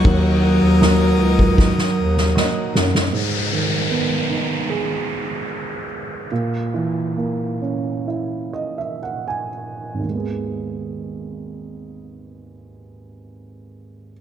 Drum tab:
RD |x-x-x-x---------|----------------|----------------|----------------|
SD |----o---oo-oo-oo|----------------|----------------|----------------|
BD |o------oo-------|----------------|----------------|----------------|